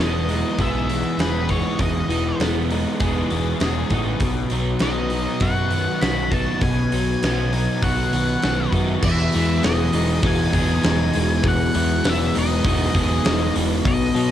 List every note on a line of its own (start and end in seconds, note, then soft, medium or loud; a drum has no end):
0.00 0.43 E1 medium
0.00 0.90 E2 medium
0.00 0.88 E3 medium
0.00 1.20 E3 medium
0.00 4.16 E3 medium
0.00 0.59 B3 medium
0.00 0.89 B3 medium
0.00 4.16 B3 medium
0.00 1.49 D#4 medium
0.00 4.16 G#4 medium
0.00 0.61 D#5 medium
0.00 4.16 F#5 medium
0.28 1.18 G#3 medium
0.28 1.83 D#4 medium
0.28 open hi-hat medium
0.59 1.03 B1 medium
0.59 2.40 B3 medium
0.59 1.19 G#4 medium
0.59 1.23 E5 medium
0.59 kick loud
0.59 open hi-hat medium
0.89 1.79 E3 medium
0.89 1.49 B3 medium
0.89 open hi-hat soft
1.18 1.63 E1 medium
1.18 2.70 G#3 medium
1.18 2.71 G#4 medium
1.18 1.51 B4 medium
1.18 snare loud
1.18 open hi-hat medium
1.49 2.41 B3 medium
1.49 2.10 D#4 medium
1.49 1.81 C#5 medium
1.49 kick medium
1.49 open hi-hat medium
1.79 2.02 E1 medium
1.79 3.31 E2 medium
1.79 3.30 E3 medium
1.79 2.37 D#5 medium
1.79 kick loud
1.79 open hi-hat medium
2.08 2.31 E1 medium
2.08 3.61 E3 medium
2.08 3.91 D#4 medium
2.08 open hi-hat medium
2.40 2.84 E1 medium
2.40 3.00 B3 medium
2.40 3.30 B3 medium
2.40 snare loud
2.40 open hi-hat medium
2.71 3.61 G#3 medium
2.71 5.11 D#4 medium
2.71 open hi-hat medium
3.00 3.23 E1 medium
3.00 4.81 B3 medium
3.00 3.60 G#4 medium
3.00 kick loud
3.00 open hi-hat medium
3.30 3.53 E1 medium
3.30 4.21 E3 medium
3.30 3.91 B3 medium
3.30 open hi-hat medium
3.60 3.83 E1 medium
3.60 4.22 G#3 medium
3.60 4.21 G#4 medium
3.60 snare loud
3.60 open hi-hat medium
3.90 4.13 A1 medium
3.90 4.81 B3 medium
3.90 4.51 D#4 medium
3.90 kick medium
3.90 open hi-hat soft
4.20 4.43 B1 medium
4.20 5.72 B2 medium
4.20 5.73 B2 medium
4.20 9.00 F#4 medium
4.20 8.99 B4 medium
4.20 kick loud
4.20 open hi-hat medium
4.50 4.74 B1 medium
4.50 6.02 F#3 medium
4.50 6.33 D#4 medium
4.50 open hi-hat medium
4.79 5.26 B1 medium
4.79 5.72 B3 medium
4.79 5.41 B3 medium
4.79 5.44 D#5 medium
4.79 snare loud
4.79 open hi-hat medium
5.10 6.02 F#3 medium
5.10 7.53 D#4 medium
5.10 open hi-hat medium
5.40 5.86 F#2 medium
5.40 6.92 B3 medium
5.40 6.01 F#4 medium
5.40 6.04 F#5 medium
5.40 kick loud
5.40 open hi-hat medium
5.71 7.23 D#3 medium
5.71 6.31 B3 medium
5.71 open hi-hat soft
6.01 6.47 B1 medium
6.01 7.52 F#3 medium
6.01 7.53 F#4 medium
6.01 6.33 B5 loud
6.01 snare loud
6.01 open hi-hat medium
6.31 7.23 B3 medium
6.31 6.91 D#4 medium
6.31 6.62 A5 medium
6.31 kick medium
6.31 open hi-hat medium
6.61 6.84 B1 medium
6.61 8.13 B2 medium
6.61 7.83 G#5 loud
6.61 kick loud
6.61 open hi-hat medium
6.92 7.14 B1 medium
6.92 8.43 F#3 medium
6.92 8.43 D#4 medium
6.92 open hi-hat medium
7.22 7.67 B1 medium
7.22 7.81 B3 medium
7.22 8.12 B3 medium
7.22 snare loud
7.22 open hi-hat medium
7.53 8.41 F#3 medium
7.53 9.04 D#4 medium
7.53 open hi-hat medium
7.82 8.05 B1 medium
7.82 9.03 B3 medium
7.82 8.42 F#4 medium
7.82 8.70 F#5 medium
7.82 kick loud
7.82 open hi-hat medium
8.12 8.35 B1 medium
8.12 9.03 D#3 medium
8.12 8.73 B3 medium
8.12 open hi-hat medium
8.42 8.66 B1 medium
8.42 9.03 F#3 medium
8.42 9.04 F#4 medium
8.42 snare loud
8.42 open hi-hat medium
8.72 8.95 F#2 medium
8.72 9.04 B3 medium
8.72 9.03 D#4 medium
8.72 kick medium
8.72 open hi-hat medium
9.03 9.28 E1 loud
9.03 10.55 E2 medium
9.03 9.62 E3 medium
9.03 13.82 E3 medium
9.03 14.31 B3 medium
9.03 14.31 F#4 medium
9.03 13.82 G#4 medium
9.03 9.65 E5 loud
9.03 kick loud
9.03 crash loud
9.32 9.59 E2 medium
9.32 10.85 E3 medium
9.32 9.92 G#3 medium
9.32 open hi-hat medium
9.63 9.89 E1 medium
9.63 10.82 E3 medium
9.63 10.23 B3 medium
9.63 10.26 D#5 loud
9.63 snare loud
9.63 open hi-hat medium
9.93 10.18 E1 medium
9.93 11.13 G#3 medium
9.93 10.84 D#4 medium
9.93 open hi-hat medium
10.23 10.48 E1 loud
10.23 12.05 B3 medium
10.23 12.07 D#4 medium
10.23 11.48 G#5 loud
10.23 kick loud
10.23 open hi-hat medium
10.53 10.78 E1 medium
10.53 12.94 B3 medium
10.53 12.05 G#4 medium
10.53 kick medium
10.53 open hi-hat medium
10.83 11.09 E1 medium
10.83 11.42 E3 medium
10.83 12.35 D#4 medium
10.83 snare loud
10.83 open hi-hat medium
11.13 11.39 E1 medium
11.13 11.74 E3 medium
11.13 11.72 G#3 medium
11.13 open hi-hat medium
11.43 11.68 E1 medium
11.43 12.95 E2 medium
11.43 12.03 E3 medium
11.43 kick loud
11.43 open hi-hat medium
11.48 12.08 F#5 loud
11.74 12.00 E2 medium
11.74 13.25 E3 medium
11.74 12.34 G#3 medium
11.74 open hi-hat medium
12.04 12.30 E1 loud
12.04 13.24 E3 medium
12.04 12.65 B3 medium
12.04 snare loud
12.04 open hi-hat medium
12.10 12.38 E5 loud
12.35 12.60 E1 medium
12.35 13.55 G#3 medium
12.35 13.25 D#4 medium
12.35 13.53 D#5 medium
12.35 open hi-hat medium
12.64 12.89 E1 loud
12.64 14.31 B3 medium
12.64 14.31 D#4 medium
12.64 kick loud
12.64 open hi-hat medium
12.94 13.19 E1 medium
12.94 14.31 B3 medium
12.94 13.85 G#4 medium
12.94 kick medium
12.94 open hi-hat medium
13.25 13.50 E1 medium
13.25 13.85 E3 medium
13.25 14.31 D#4 medium
13.25 snare loud
13.25 open hi-hat medium
13.55 13.80 E1 medium
13.55 13.85 E3 medium
13.55 13.86 G#3 medium
13.55 open hi-hat medium
13.85 14.09 B1 medium
13.85 14.31 B2 medium
13.85 14.31 D#5 loud
13.85 kick loud
13.85 open hi-hat medium
14.15 14.31 B2 medium
14.15 14.31 F#3 medium
14.15 open hi-hat medium